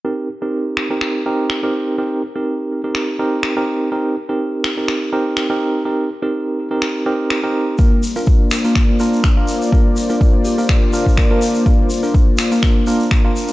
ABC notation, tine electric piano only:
X:1
M:4/4
L:1/16
Q:"Swing 16ths" 1/4=124
K:Cm
V:1 name="Tine electric piano"
[CEGB]2 z [CEGB]4 [CEGB]3 [CEGB]3 [CEGB]3 | [CEGB]2 z [CEGB]4 [CEGB]3 [CEGB]3 [CEGB]3 | [CEGB]2 z [CEGB]4 [CEGB]3 [CEGB]3 [CEGB]3 | [CEGB]2 z [CEGB]4 [CEGB]3 [CEGB]3 [CEGB]3 |
[B,DFB]2 z [B,DFB]4 [B,DFB]3 [B,DFB]3 [B,DFB]3 | [B,DFB]2 z [B,DFB]4 [B,DFB]3 [B,DFB]3 [B,DFB]3 | [B,DFB]2 z [B,DFB]4 [B,DFB]3 [B,DFB]3 [B,DFB]3 |]